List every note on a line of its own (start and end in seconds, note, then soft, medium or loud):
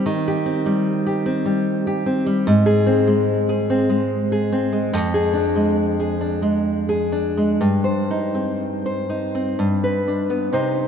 0.06 2.43 D#3 loud
0.28 1.05 G4 medium
0.46 1.25 C4 medium
0.66 1.44 G3 medium
1.06 1.86 G4 medium
1.26 2.05 C4 medium
1.46 2.25 G3 medium
1.87 2.47 G4 medium
2.06 2.47 C4 medium
2.26 2.47 G3 medium
2.47 4.90 G#2 loud
2.66 3.48 G#4 medium
2.87 3.69 C4 medium
3.07 3.88 G#3 medium
3.49 4.31 G#4 medium
3.70 4.51 C4 medium
3.90 4.71 G#3 medium
4.32 4.94 G#4 medium
4.52 4.94 C4 medium
4.72 4.94 G#3 medium
4.93 7.56 F2 loud
5.14 5.99 G#4 medium
5.33 6.20 D4 medium
5.56 6.41 G#3 medium
6.00 6.88 G#4 medium
6.21 7.11 D4 medium
6.42 7.36 G#3 medium
6.89 7.61 G#4 medium
7.12 7.61 D4 medium
7.37 7.61 G#3 medium
7.61 9.54 G2 loud
7.84 8.85 C5 medium
8.11 9.08 D#4 medium
8.35 9.34 C4 medium
8.86 9.58 C5 medium
9.10 9.58 D#4 medium
9.35 9.58 C4 medium
9.59 10.48 G2 medium
9.84 10.52 B4 medium
10.08 10.52 D4 medium
10.30 10.51 B3 medium
10.53 10.88 C3 medium
10.53 10.88 D#4 medium
10.53 10.88 C5 loud